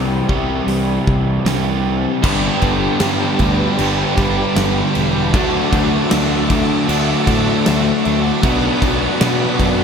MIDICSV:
0, 0, Header, 1, 7, 480
1, 0, Start_track
1, 0, Tempo, 775194
1, 1383, Time_signature, 4, 2, 24, 8
1, 6092, End_track
2, 0, Start_track
2, 0, Title_t, "String machine"
2, 0, Program_c, 0, 50
2, 1386, Note_on_c, 0, 71, 76
2, 1387, Note_on_c, 0, 86, 93
2, 1388, Note_on_c, 0, 67, 86
2, 1388, Note_on_c, 0, 81, 75
2, 3284, Note_off_c, 0, 71, 0
2, 3285, Note_off_c, 0, 67, 0
2, 3285, Note_off_c, 0, 81, 0
2, 3305, Note_on_c, 0, 81, 76
2, 3309, Note_on_c, 0, 66, 80
2, 3311, Note_on_c, 0, 76, 72
2, 5203, Note_off_c, 0, 81, 0
2, 5206, Note_off_c, 0, 76, 0
2, 5213, Note_on_c, 0, 83, 71
2, 5218, Note_on_c, 0, 74, 79
2, 6092, Note_off_c, 0, 66, 0
2, 6092, Note_off_c, 0, 74, 0
2, 6092, Note_off_c, 0, 83, 0
2, 6092, Note_off_c, 0, 86, 0
2, 6092, End_track
3, 0, Start_track
3, 0, Title_t, "Overdriven electric guitar"
3, 0, Program_c, 1, 29
3, 0, Note_on_c, 1, 64, 86
3, 1374, Note_off_c, 1, 64, 0
3, 6092, End_track
4, 0, Start_track
4, 0, Title_t, "Overdriven electric guitar"
4, 0, Program_c, 2, 29
4, 0, Note_on_c, 2, 48, 87
4, 0, Note_on_c, 2, 52, 80
4, 0, Note_on_c, 2, 55, 92
4, 0, Note_on_c, 2, 60, 86
4, 0, Note_on_c, 2, 67, 90
4, 166, Note_off_c, 2, 48, 0
4, 168, Note_off_c, 2, 52, 0
4, 171, Note_off_c, 2, 55, 0
4, 171, Note_off_c, 2, 67, 0
4, 173, Note_off_c, 2, 60, 0
4, 178, Note_on_c, 2, 67, 76
4, 184, Note_on_c, 2, 60, 73
4, 189, Note_on_c, 2, 55, 78
4, 193, Note_on_c, 2, 52, 69
4, 199, Note_on_c, 2, 48, 62
4, 886, Note_off_c, 2, 67, 0
4, 889, Note_off_c, 2, 60, 0
4, 891, Note_off_c, 2, 48, 0
4, 892, Note_off_c, 2, 55, 0
4, 894, Note_off_c, 2, 52, 0
4, 898, Note_on_c, 2, 48, 79
4, 904, Note_on_c, 2, 52, 71
4, 911, Note_on_c, 2, 55, 83
4, 912, Note_on_c, 2, 60, 73
4, 919, Note_on_c, 2, 67, 78
4, 1366, Note_off_c, 2, 48, 0
4, 1369, Note_off_c, 2, 52, 0
4, 1373, Note_off_c, 2, 55, 0
4, 1373, Note_off_c, 2, 60, 0
4, 1377, Note_off_c, 2, 67, 0
4, 1381, Note_on_c, 2, 43, 93
4, 1385, Note_on_c, 2, 50, 87
4, 1391, Note_on_c, 2, 55, 93
4, 1394, Note_on_c, 2, 59, 91
4, 1395, Note_on_c, 2, 62, 90
4, 1399, Note_on_c, 2, 67, 99
4, 2327, Note_off_c, 2, 43, 0
4, 2329, Note_off_c, 2, 50, 0
4, 2332, Note_off_c, 2, 55, 0
4, 2334, Note_off_c, 2, 59, 0
4, 2336, Note_off_c, 2, 67, 0
4, 2345, Note_on_c, 2, 43, 74
4, 2350, Note_on_c, 2, 50, 82
4, 2354, Note_on_c, 2, 55, 81
4, 2358, Note_on_c, 2, 59, 79
4, 2359, Note_off_c, 2, 62, 0
4, 2361, Note_on_c, 2, 62, 82
4, 2364, Note_on_c, 2, 67, 90
4, 3289, Note_off_c, 2, 43, 0
4, 3291, Note_off_c, 2, 50, 0
4, 3293, Note_off_c, 2, 55, 0
4, 3295, Note_off_c, 2, 59, 0
4, 3298, Note_off_c, 2, 67, 0
4, 3302, Note_on_c, 2, 50, 90
4, 3307, Note_on_c, 2, 54, 100
4, 3312, Note_on_c, 2, 57, 101
4, 3317, Note_off_c, 2, 62, 0
4, 3320, Note_on_c, 2, 62, 98
4, 3322, Note_on_c, 2, 66, 95
4, 4247, Note_off_c, 2, 50, 0
4, 4252, Note_off_c, 2, 57, 0
4, 4261, Note_off_c, 2, 54, 0
4, 4261, Note_on_c, 2, 50, 78
4, 4263, Note_on_c, 2, 54, 85
4, 4269, Note_on_c, 2, 57, 81
4, 4274, Note_off_c, 2, 62, 0
4, 4277, Note_off_c, 2, 66, 0
4, 4277, Note_on_c, 2, 62, 87
4, 4279, Note_on_c, 2, 66, 86
4, 5206, Note_off_c, 2, 50, 0
4, 5207, Note_off_c, 2, 54, 0
4, 5210, Note_off_c, 2, 57, 0
4, 5215, Note_off_c, 2, 66, 0
4, 5222, Note_on_c, 2, 47, 86
4, 5228, Note_on_c, 2, 54, 94
4, 5233, Note_off_c, 2, 62, 0
4, 5233, Note_on_c, 2, 59, 104
4, 5236, Note_on_c, 2, 62, 108
4, 5241, Note_on_c, 2, 66, 101
4, 6092, Note_off_c, 2, 47, 0
4, 6092, Note_off_c, 2, 54, 0
4, 6092, Note_off_c, 2, 59, 0
4, 6092, Note_off_c, 2, 62, 0
4, 6092, Note_off_c, 2, 66, 0
4, 6092, End_track
5, 0, Start_track
5, 0, Title_t, "Distorted electric guitar"
5, 0, Program_c, 3, 30
5, 1378, Note_on_c, 3, 43, 100
5, 1380, Note_on_c, 3, 50, 94
5, 1384, Note_on_c, 3, 55, 106
5, 1618, Note_off_c, 3, 43, 0
5, 1622, Note_off_c, 3, 50, 0
5, 1625, Note_off_c, 3, 55, 0
5, 1626, Note_on_c, 3, 43, 83
5, 1630, Note_on_c, 3, 50, 88
5, 1633, Note_on_c, 3, 55, 88
5, 1860, Note_off_c, 3, 43, 0
5, 1863, Note_off_c, 3, 50, 0
5, 1863, Note_off_c, 3, 55, 0
5, 1868, Note_on_c, 3, 43, 82
5, 1870, Note_on_c, 3, 50, 91
5, 1870, Note_on_c, 3, 55, 92
5, 2097, Note_off_c, 3, 43, 0
5, 2101, Note_off_c, 3, 55, 0
5, 2104, Note_off_c, 3, 50, 0
5, 2105, Note_on_c, 3, 43, 95
5, 2109, Note_on_c, 3, 55, 121
5, 2111, Note_on_c, 3, 50, 111
5, 2333, Note_off_c, 3, 43, 0
5, 2333, Note_off_c, 3, 50, 0
5, 2339, Note_off_c, 3, 55, 0
5, 2340, Note_on_c, 3, 43, 78
5, 2341, Note_on_c, 3, 50, 86
5, 2347, Note_on_c, 3, 55, 86
5, 2568, Note_off_c, 3, 43, 0
5, 2571, Note_off_c, 3, 50, 0
5, 2571, Note_off_c, 3, 55, 0
5, 2576, Note_on_c, 3, 43, 81
5, 2578, Note_on_c, 3, 50, 85
5, 2578, Note_on_c, 3, 55, 94
5, 2809, Note_off_c, 3, 50, 0
5, 2811, Note_off_c, 3, 43, 0
5, 2817, Note_off_c, 3, 55, 0
5, 2817, Note_on_c, 3, 50, 91
5, 2819, Note_on_c, 3, 43, 98
5, 2825, Note_on_c, 3, 55, 99
5, 3053, Note_off_c, 3, 43, 0
5, 3056, Note_off_c, 3, 50, 0
5, 3056, Note_off_c, 3, 55, 0
5, 3061, Note_on_c, 3, 43, 82
5, 3063, Note_on_c, 3, 55, 101
5, 3064, Note_on_c, 3, 50, 90
5, 3287, Note_off_c, 3, 43, 0
5, 3288, Note_off_c, 3, 50, 0
5, 3288, Note_off_c, 3, 55, 0
5, 3297, Note_on_c, 3, 50, 91
5, 3298, Note_on_c, 3, 57, 95
5, 3302, Note_on_c, 3, 62, 109
5, 3526, Note_off_c, 3, 50, 0
5, 3530, Note_off_c, 3, 57, 0
5, 3533, Note_off_c, 3, 62, 0
5, 3533, Note_on_c, 3, 50, 73
5, 3536, Note_on_c, 3, 62, 92
5, 3537, Note_on_c, 3, 57, 95
5, 3765, Note_off_c, 3, 50, 0
5, 3767, Note_off_c, 3, 57, 0
5, 3773, Note_on_c, 3, 50, 93
5, 3775, Note_on_c, 3, 57, 95
5, 3776, Note_off_c, 3, 62, 0
5, 3778, Note_on_c, 3, 62, 93
5, 4011, Note_off_c, 3, 50, 0
5, 4011, Note_off_c, 3, 57, 0
5, 4018, Note_on_c, 3, 57, 102
5, 4019, Note_on_c, 3, 50, 103
5, 4021, Note_off_c, 3, 62, 0
5, 4023, Note_on_c, 3, 62, 118
5, 4249, Note_off_c, 3, 50, 0
5, 4254, Note_off_c, 3, 57, 0
5, 4257, Note_on_c, 3, 50, 80
5, 4258, Note_off_c, 3, 62, 0
5, 4261, Note_on_c, 3, 62, 96
5, 4262, Note_on_c, 3, 57, 83
5, 4489, Note_off_c, 3, 50, 0
5, 4494, Note_off_c, 3, 57, 0
5, 4496, Note_on_c, 3, 50, 85
5, 4500, Note_off_c, 3, 62, 0
5, 4501, Note_on_c, 3, 57, 92
5, 4502, Note_on_c, 3, 62, 86
5, 4729, Note_off_c, 3, 50, 0
5, 4736, Note_off_c, 3, 57, 0
5, 4737, Note_on_c, 3, 50, 94
5, 4738, Note_off_c, 3, 62, 0
5, 4741, Note_on_c, 3, 62, 106
5, 4743, Note_on_c, 3, 57, 108
5, 4966, Note_off_c, 3, 50, 0
5, 4969, Note_off_c, 3, 57, 0
5, 4973, Note_on_c, 3, 50, 86
5, 4974, Note_off_c, 3, 62, 0
5, 4976, Note_on_c, 3, 57, 90
5, 4976, Note_on_c, 3, 62, 106
5, 5203, Note_off_c, 3, 50, 0
5, 5204, Note_off_c, 3, 57, 0
5, 5213, Note_on_c, 3, 47, 101
5, 5214, Note_off_c, 3, 62, 0
5, 5216, Note_on_c, 3, 59, 112
5, 5217, Note_on_c, 3, 54, 102
5, 5448, Note_off_c, 3, 47, 0
5, 5451, Note_off_c, 3, 54, 0
5, 5453, Note_off_c, 3, 59, 0
5, 5455, Note_on_c, 3, 47, 85
5, 5458, Note_on_c, 3, 54, 90
5, 5460, Note_on_c, 3, 59, 97
5, 5692, Note_off_c, 3, 47, 0
5, 5693, Note_off_c, 3, 54, 0
5, 5699, Note_off_c, 3, 59, 0
5, 5699, Note_on_c, 3, 47, 83
5, 5701, Note_on_c, 3, 54, 96
5, 5707, Note_on_c, 3, 59, 102
5, 5923, Note_off_c, 3, 47, 0
5, 5929, Note_off_c, 3, 54, 0
5, 5929, Note_off_c, 3, 59, 0
5, 5931, Note_on_c, 3, 47, 104
5, 5936, Note_on_c, 3, 54, 123
5, 5937, Note_on_c, 3, 59, 114
5, 6092, Note_off_c, 3, 47, 0
5, 6092, Note_off_c, 3, 54, 0
5, 6092, Note_off_c, 3, 59, 0
5, 6092, End_track
6, 0, Start_track
6, 0, Title_t, "Picked electric bass"
6, 0, Program_c, 4, 34
6, 0, Note_on_c, 4, 36, 86
6, 126, Note_off_c, 4, 36, 0
6, 179, Note_on_c, 4, 36, 82
6, 366, Note_off_c, 4, 36, 0
6, 415, Note_on_c, 4, 36, 81
6, 603, Note_off_c, 4, 36, 0
6, 664, Note_on_c, 4, 36, 81
6, 849, Note_off_c, 4, 36, 0
6, 897, Note_on_c, 4, 36, 77
6, 1269, Note_off_c, 4, 36, 0
6, 1385, Note_on_c, 4, 31, 88
6, 1536, Note_off_c, 4, 31, 0
6, 1624, Note_on_c, 4, 31, 85
6, 1776, Note_off_c, 4, 31, 0
6, 1862, Note_on_c, 4, 43, 95
6, 2015, Note_off_c, 4, 43, 0
6, 2100, Note_on_c, 4, 38, 89
6, 2253, Note_off_c, 4, 38, 0
6, 2346, Note_on_c, 4, 31, 95
6, 2497, Note_off_c, 4, 31, 0
6, 2586, Note_on_c, 4, 31, 96
6, 2737, Note_off_c, 4, 31, 0
6, 2826, Note_on_c, 4, 31, 95
6, 2977, Note_off_c, 4, 31, 0
6, 3074, Note_on_c, 4, 28, 85
6, 3307, Note_off_c, 4, 28, 0
6, 3307, Note_on_c, 4, 38, 100
6, 3457, Note_off_c, 4, 38, 0
6, 3544, Note_on_c, 4, 38, 88
6, 3695, Note_off_c, 4, 38, 0
6, 3792, Note_on_c, 4, 38, 97
6, 4092, Note_off_c, 4, 38, 0
6, 4263, Note_on_c, 4, 38, 98
6, 4415, Note_off_c, 4, 38, 0
6, 4501, Note_on_c, 4, 45, 91
6, 4653, Note_off_c, 4, 45, 0
6, 4753, Note_on_c, 4, 38, 86
6, 4901, Note_off_c, 4, 38, 0
6, 4993, Note_on_c, 4, 38, 92
6, 5141, Note_off_c, 4, 38, 0
6, 5224, Note_on_c, 4, 35, 88
6, 5375, Note_off_c, 4, 35, 0
6, 5462, Note_on_c, 4, 35, 89
6, 5613, Note_off_c, 4, 35, 0
6, 5704, Note_on_c, 4, 47, 97
6, 5855, Note_off_c, 4, 47, 0
6, 5943, Note_on_c, 4, 42, 86
6, 6092, Note_off_c, 4, 42, 0
6, 6092, End_track
7, 0, Start_track
7, 0, Title_t, "Drums"
7, 181, Note_on_c, 9, 36, 80
7, 243, Note_off_c, 9, 36, 0
7, 421, Note_on_c, 9, 46, 56
7, 483, Note_off_c, 9, 46, 0
7, 665, Note_on_c, 9, 36, 82
7, 727, Note_off_c, 9, 36, 0
7, 905, Note_on_c, 9, 46, 53
7, 906, Note_on_c, 9, 38, 101
7, 967, Note_off_c, 9, 46, 0
7, 968, Note_off_c, 9, 38, 0
7, 1384, Note_on_c, 9, 49, 110
7, 1384, Note_on_c, 9, 57, 77
7, 1386, Note_on_c, 9, 36, 110
7, 1445, Note_off_c, 9, 49, 0
7, 1445, Note_off_c, 9, 57, 0
7, 1448, Note_off_c, 9, 36, 0
7, 1619, Note_on_c, 9, 57, 58
7, 1625, Note_on_c, 9, 36, 86
7, 1681, Note_off_c, 9, 57, 0
7, 1687, Note_off_c, 9, 36, 0
7, 1857, Note_on_c, 9, 57, 84
7, 1858, Note_on_c, 9, 38, 113
7, 1919, Note_off_c, 9, 57, 0
7, 1920, Note_off_c, 9, 38, 0
7, 2099, Note_on_c, 9, 57, 63
7, 2104, Note_on_c, 9, 36, 89
7, 2160, Note_off_c, 9, 57, 0
7, 2166, Note_off_c, 9, 36, 0
7, 2344, Note_on_c, 9, 57, 87
7, 2406, Note_off_c, 9, 57, 0
7, 2584, Note_on_c, 9, 57, 59
7, 2586, Note_on_c, 9, 36, 88
7, 2646, Note_off_c, 9, 57, 0
7, 2648, Note_off_c, 9, 36, 0
7, 2825, Note_on_c, 9, 57, 76
7, 2827, Note_on_c, 9, 38, 105
7, 2887, Note_off_c, 9, 57, 0
7, 2888, Note_off_c, 9, 38, 0
7, 3065, Note_on_c, 9, 57, 62
7, 3127, Note_off_c, 9, 57, 0
7, 3306, Note_on_c, 9, 36, 113
7, 3307, Note_on_c, 9, 57, 87
7, 3367, Note_off_c, 9, 36, 0
7, 3369, Note_off_c, 9, 57, 0
7, 3546, Note_on_c, 9, 36, 91
7, 3546, Note_on_c, 9, 57, 66
7, 3608, Note_off_c, 9, 36, 0
7, 3608, Note_off_c, 9, 57, 0
7, 3783, Note_on_c, 9, 57, 90
7, 3784, Note_on_c, 9, 38, 122
7, 3845, Note_off_c, 9, 57, 0
7, 3846, Note_off_c, 9, 38, 0
7, 4023, Note_on_c, 9, 57, 67
7, 4025, Note_on_c, 9, 36, 90
7, 4085, Note_off_c, 9, 57, 0
7, 4087, Note_off_c, 9, 36, 0
7, 4266, Note_on_c, 9, 57, 86
7, 4328, Note_off_c, 9, 57, 0
7, 4502, Note_on_c, 9, 57, 69
7, 4503, Note_on_c, 9, 36, 85
7, 4563, Note_off_c, 9, 57, 0
7, 4565, Note_off_c, 9, 36, 0
7, 4743, Note_on_c, 9, 57, 76
7, 4744, Note_on_c, 9, 38, 106
7, 4805, Note_off_c, 9, 57, 0
7, 4806, Note_off_c, 9, 38, 0
7, 4986, Note_on_c, 9, 57, 61
7, 5048, Note_off_c, 9, 57, 0
7, 5221, Note_on_c, 9, 57, 77
7, 5222, Note_on_c, 9, 36, 111
7, 5282, Note_off_c, 9, 57, 0
7, 5284, Note_off_c, 9, 36, 0
7, 5462, Note_on_c, 9, 36, 86
7, 5462, Note_on_c, 9, 57, 62
7, 5523, Note_off_c, 9, 36, 0
7, 5524, Note_off_c, 9, 57, 0
7, 5701, Note_on_c, 9, 57, 81
7, 5703, Note_on_c, 9, 38, 124
7, 5763, Note_off_c, 9, 57, 0
7, 5765, Note_off_c, 9, 38, 0
7, 5941, Note_on_c, 9, 36, 85
7, 5945, Note_on_c, 9, 57, 62
7, 6003, Note_off_c, 9, 36, 0
7, 6006, Note_off_c, 9, 57, 0
7, 6092, End_track
0, 0, End_of_file